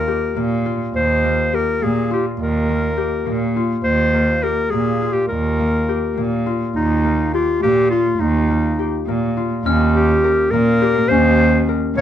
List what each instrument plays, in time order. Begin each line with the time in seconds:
Already playing: cello D#2, harp A#3 F4, clarinet A#4
0.08 harp G4
0.36 cello A#2, harp A#3
0.66 harp F4
0.95 cello D#2, clarinet C5
1.24 harp A#3
1.53 harp G4, clarinet A#4
1.82 cello A#2, harp A#3, clarinet G#4
2.11 harp F4, clarinet G4
2.39 cello D#2, clarinet A#4
2.69 harp A#3
2.97 harp G4
3.26 cello A#2, harp A#3
3.56 harp F4
3.84 cello D#2, clarinet C5
4.14 harp A#3
4.43 harp G4, clarinet A#4
4.70 cello A#2, harp A#3, clarinet G#4
5.02 harp F4
5.13 clarinet G4
5.28 cello D#2, clarinet A#4
5.59 harp A#3
5.89 harp G4
6.16 cello A#2, harp A#3
6.46 harp F4
6.75 cello D#2, clarinet D#4
7.05 harp A#3
7.34 clarinet F4, harp G4
7.62 cello A#2, harp A#3, clarinet G4
7.91 clarinet F4, harp F4
8.19 cello D#2, clarinet D#4
8.50 harp A#3
8.79 harp G4
9.07 cello A#2, harp A#3
9.37 harp F4
9.65 cello D#2, harp C#4, glockenspiel F6
9.94 clarinet G4
10.24 harp A#4
10.51 cello A#2, harp A#3, clarinet A#4
10.82 harp G4
11.09 cello D#2, harp C#4, clarinet C5
11.69 harp A#4
11.96 cello A#2, harp A#3, clarinet C#5